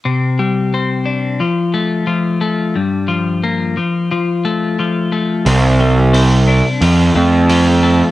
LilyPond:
<<
  \new Staff \with { instrumentName = "Clean electric guitar" } { \clef bass \time 4/4 \key f \major \tempo 4 = 89 c8 g8 c'8 d'8 f8 a8 f8 a8 | g,8 f8 bes8 f8 f8 a8 f8 a8 | c8 g8 c'8 d'8 f8 a8 f8 a8 | }
  \new Staff \with { instrumentName = "Picked electric bass" } { \clef bass \time 4/4 \key f \major r1 | r1 | c,2 f,8 f,4. | }
  \new DrumStaff \with { instrumentName = "Drums" } \drummode { \time 4/4 r4 r4 r4 r4 | r4 r4 r4 r4 | hho4 hho4 hho4 hho4 | }
>>